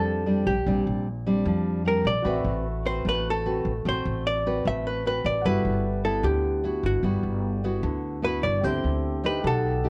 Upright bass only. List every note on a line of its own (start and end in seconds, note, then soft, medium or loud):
0.00 0.43 F2 medium
0.47 0.65 A#1 medium
0.67 0.85 A#1 medium
0.87 1.42 A#1 medium
1.45 2.02 F2 medium
2.05 2.24 A#1 medium
2.25 2.44 A1 medium
2.45 3.01 A1 medium
3.05 3.61 A1 medium
3.65 3.84 A1 medium
3.85 4.04 A1 medium
4.05 4.61 A1 medium
4.65 5.21 A1 medium
5.25 5.43 A1 medium
5.45 5.64 G1 medium
5.65 6.21 G1 medium
6.23 6.80 D2 medium
6.83 7.02 G1 medium
7.03 7.22 G1 medium
7.23 7.79 G1 medium
7.83 8.39 D2 loud
8.44 8.62 G1 medium
8.64 8.82 D2 medium
8.84 9.40 D2 medium
9.44 9.89 B1 loud